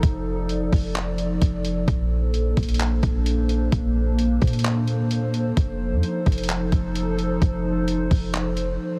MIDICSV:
0, 0, Header, 1, 4, 480
1, 0, Start_track
1, 0, Key_signature, -2, "major"
1, 0, Tempo, 461538
1, 32, Time_signature, 4, 2, 24, 8
1, 9352, End_track
2, 0, Start_track
2, 0, Title_t, "Ambient pad"
2, 0, Program_c, 0, 92
2, 0, Note_on_c, 0, 53, 84
2, 0, Note_on_c, 0, 63, 77
2, 0, Note_on_c, 0, 69, 77
2, 32, Note_on_c, 0, 74, 92
2, 1914, Note_off_c, 0, 53, 0
2, 1914, Note_off_c, 0, 63, 0
2, 1933, Note_off_c, 0, 74, 0
2, 1951, Note_on_c, 0, 62, 76
2, 1951, Note_on_c, 0, 72, 90
2, 1952, Note_on_c, 0, 58, 84
2, 5751, Note_off_c, 0, 69, 0
2, 5753, Note_off_c, 0, 62, 0
2, 5754, Note_off_c, 0, 58, 0
2, 5791, Note_on_c, 0, 53, 82
2, 5793, Note_on_c, 0, 63, 77
2, 5793, Note_on_c, 0, 69, 81
2, 9352, Note_off_c, 0, 53, 0
2, 9352, Note_off_c, 0, 63, 0
2, 9352, Note_off_c, 0, 69, 0
2, 9352, Note_off_c, 0, 72, 0
2, 9352, End_track
3, 0, Start_track
3, 0, Title_t, "808-style bass"
3, 0, Program_c, 1, 38
3, 32, Note_on_c, 1, 29, 113
3, 724, Note_off_c, 1, 29, 0
3, 754, Note_on_c, 1, 29, 103
3, 1445, Note_off_c, 1, 29, 0
3, 1473, Note_on_c, 1, 29, 104
3, 1934, Note_off_c, 1, 29, 0
3, 1953, Note_on_c, 1, 34, 112
3, 2644, Note_off_c, 1, 34, 0
3, 2674, Note_on_c, 1, 34, 100
3, 3134, Note_off_c, 1, 34, 0
3, 3151, Note_on_c, 1, 34, 99
3, 3843, Note_off_c, 1, 34, 0
3, 3873, Note_on_c, 1, 34, 117
3, 4564, Note_off_c, 1, 34, 0
3, 4594, Note_on_c, 1, 46, 104
3, 5752, Note_off_c, 1, 46, 0
3, 5793, Note_on_c, 1, 29, 106
3, 6152, Note_on_c, 1, 41, 94
3, 6168, Note_off_c, 1, 29, 0
3, 6266, Note_off_c, 1, 41, 0
3, 6514, Note_on_c, 1, 29, 103
3, 6974, Note_off_c, 1, 29, 0
3, 6991, Note_on_c, 1, 29, 100
3, 7683, Note_off_c, 1, 29, 0
3, 7713, Note_on_c, 1, 29, 113
3, 8404, Note_off_c, 1, 29, 0
3, 8435, Note_on_c, 1, 29, 105
3, 9125, Note_off_c, 1, 29, 0
3, 9352, End_track
4, 0, Start_track
4, 0, Title_t, "Drums"
4, 31, Note_on_c, 9, 42, 71
4, 32, Note_on_c, 9, 36, 121
4, 135, Note_off_c, 9, 42, 0
4, 136, Note_off_c, 9, 36, 0
4, 512, Note_on_c, 9, 42, 67
4, 616, Note_off_c, 9, 42, 0
4, 754, Note_on_c, 9, 36, 92
4, 755, Note_on_c, 9, 46, 52
4, 858, Note_off_c, 9, 36, 0
4, 859, Note_off_c, 9, 46, 0
4, 991, Note_on_c, 9, 42, 79
4, 993, Note_on_c, 9, 39, 121
4, 1095, Note_off_c, 9, 42, 0
4, 1097, Note_off_c, 9, 39, 0
4, 1230, Note_on_c, 9, 42, 67
4, 1334, Note_off_c, 9, 42, 0
4, 1472, Note_on_c, 9, 42, 76
4, 1473, Note_on_c, 9, 36, 88
4, 1576, Note_off_c, 9, 42, 0
4, 1577, Note_off_c, 9, 36, 0
4, 1712, Note_on_c, 9, 42, 70
4, 1816, Note_off_c, 9, 42, 0
4, 1953, Note_on_c, 9, 36, 119
4, 1953, Note_on_c, 9, 42, 69
4, 2057, Note_off_c, 9, 36, 0
4, 2057, Note_off_c, 9, 42, 0
4, 2433, Note_on_c, 9, 42, 62
4, 2537, Note_off_c, 9, 42, 0
4, 2672, Note_on_c, 9, 42, 41
4, 2674, Note_on_c, 9, 36, 89
4, 2733, Note_off_c, 9, 42, 0
4, 2733, Note_on_c, 9, 42, 51
4, 2778, Note_off_c, 9, 36, 0
4, 2793, Note_off_c, 9, 42, 0
4, 2793, Note_on_c, 9, 42, 66
4, 2853, Note_off_c, 9, 42, 0
4, 2853, Note_on_c, 9, 42, 76
4, 2912, Note_off_c, 9, 42, 0
4, 2912, Note_on_c, 9, 42, 76
4, 2914, Note_on_c, 9, 39, 120
4, 3016, Note_off_c, 9, 42, 0
4, 3018, Note_off_c, 9, 39, 0
4, 3150, Note_on_c, 9, 42, 63
4, 3151, Note_on_c, 9, 36, 96
4, 3254, Note_off_c, 9, 42, 0
4, 3255, Note_off_c, 9, 36, 0
4, 3391, Note_on_c, 9, 42, 81
4, 3495, Note_off_c, 9, 42, 0
4, 3632, Note_on_c, 9, 42, 71
4, 3736, Note_off_c, 9, 42, 0
4, 3872, Note_on_c, 9, 42, 71
4, 3873, Note_on_c, 9, 36, 114
4, 3976, Note_off_c, 9, 42, 0
4, 3977, Note_off_c, 9, 36, 0
4, 4353, Note_on_c, 9, 42, 65
4, 4457, Note_off_c, 9, 42, 0
4, 4592, Note_on_c, 9, 42, 44
4, 4594, Note_on_c, 9, 36, 91
4, 4652, Note_off_c, 9, 42, 0
4, 4652, Note_on_c, 9, 42, 53
4, 4698, Note_off_c, 9, 36, 0
4, 4713, Note_off_c, 9, 42, 0
4, 4713, Note_on_c, 9, 42, 65
4, 4773, Note_off_c, 9, 42, 0
4, 4773, Note_on_c, 9, 42, 78
4, 4832, Note_off_c, 9, 42, 0
4, 4832, Note_on_c, 9, 42, 76
4, 4834, Note_on_c, 9, 39, 123
4, 4936, Note_off_c, 9, 42, 0
4, 4938, Note_off_c, 9, 39, 0
4, 5070, Note_on_c, 9, 42, 66
4, 5174, Note_off_c, 9, 42, 0
4, 5312, Note_on_c, 9, 42, 82
4, 5416, Note_off_c, 9, 42, 0
4, 5552, Note_on_c, 9, 42, 70
4, 5656, Note_off_c, 9, 42, 0
4, 5793, Note_on_c, 9, 36, 116
4, 5793, Note_on_c, 9, 42, 71
4, 5897, Note_off_c, 9, 36, 0
4, 5897, Note_off_c, 9, 42, 0
4, 6272, Note_on_c, 9, 42, 64
4, 6376, Note_off_c, 9, 42, 0
4, 6512, Note_on_c, 9, 42, 41
4, 6514, Note_on_c, 9, 36, 90
4, 6573, Note_off_c, 9, 42, 0
4, 6573, Note_on_c, 9, 42, 51
4, 6618, Note_off_c, 9, 36, 0
4, 6633, Note_off_c, 9, 42, 0
4, 6633, Note_on_c, 9, 42, 65
4, 6692, Note_off_c, 9, 42, 0
4, 6692, Note_on_c, 9, 42, 73
4, 6752, Note_off_c, 9, 42, 0
4, 6752, Note_on_c, 9, 42, 79
4, 6754, Note_on_c, 9, 39, 126
4, 6856, Note_off_c, 9, 42, 0
4, 6858, Note_off_c, 9, 39, 0
4, 6990, Note_on_c, 9, 42, 65
4, 6992, Note_on_c, 9, 36, 96
4, 7094, Note_off_c, 9, 42, 0
4, 7096, Note_off_c, 9, 36, 0
4, 7232, Note_on_c, 9, 42, 75
4, 7336, Note_off_c, 9, 42, 0
4, 7473, Note_on_c, 9, 42, 67
4, 7577, Note_off_c, 9, 42, 0
4, 7713, Note_on_c, 9, 36, 119
4, 7713, Note_on_c, 9, 42, 71
4, 7817, Note_off_c, 9, 36, 0
4, 7817, Note_off_c, 9, 42, 0
4, 8193, Note_on_c, 9, 42, 65
4, 8297, Note_off_c, 9, 42, 0
4, 8435, Note_on_c, 9, 36, 91
4, 8437, Note_on_c, 9, 46, 53
4, 8539, Note_off_c, 9, 36, 0
4, 8541, Note_off_c, 9, 46, 0
4, 8672, Note_on_c, 9, 42, 81
4, 8675, Note_on_c, 9, 39, 120
4, 8776, Note_off_c, 9, 42, 0
4, 8779, Note_off_c, 9, 39, 0
4, 8910, Note_on_c, 9, 42, 65
4, 9014, Note_off_c, 9, 42, 0
4, 9352, End_track
0, 0, End_of_file